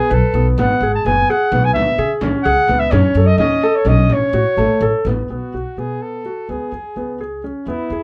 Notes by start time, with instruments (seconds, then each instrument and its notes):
Already playing: flugelhorn G#4
0.10 upright bass B1, flugelhorn A4, felt piano B4
0.34 upright bass B1, felt piano B3
0.58 upright bass G#1, felt piano B3, flugelhorn F#5, frame drum
0.80 upright bass G#1, felt piano G#4, frame drum
0.95 flugelhorn A5
1.05 upright bass F#1, felt piano B3, flugelhorn G#5, frame drum
1.29 felt piano G#4, flugelhorn F#5, frame drum
1.52 upright bass B1, felt piano B3, frame drum
1.64 flugelhorn G#5
1.74 upright bass C#2, flugelhorn E5, frame drum
1.98 upright bass C#3, felt piano G#4, frame drum
2.21 upright bass C#2, felt piano C#4, frame drum
2.43 upright bass C#2, felt piano G#4, flugelhorn F#5, frame drum
2.68 upright bass C#2, felt piano B3, frame drum
2.79 flugelhorn E5
2.91 upright bass F#2, felt piano C#4, flugelhorn C#5, frame drum
3.15 upright bass F#2, felt piano A4, frame drum
3.26 flugelhorn D#5
3.38 upright bass D#2, felt piano C#4, flugelhorn D#5, frame drum
3.61 felt piano A4, frame drum
3.75 flugelhorn C#5
3.85 upright bass B1, felt piano C#4, flugelhorn D#5, frame drum
4.09 upright bass A1, flugelhorn C#5, frame drum
4.33 upright bass A2, felt piano F#4
4.57 upright bass A1, felt piano A3, frame drum
4.81 upright bass A1, felt piano A4
5.05 upright bass A1, felt piano B3, frame drum
5.30 upright bass B1, felt piano B3, flugelhorn F#4
5.54 upright bass B1, felt piano F#4
5.77 upright bass B2, felt piano B3, flugelhorn G#4
6.02 flugelhorn A4
6.25 felt piano F#4
6.49 upright bass C#2, felt piano B3, flugelhorn G#4
6.72 upright bass E2, felt piano G#4
6.96 upright bass C#2, felt piano B3
7.21 felt piano G#4
7.44 felt piano C#4
7.67 upright bass E2, felt piano B3, flugelhorn E4
7.90 upright bass E2, felt piano G#4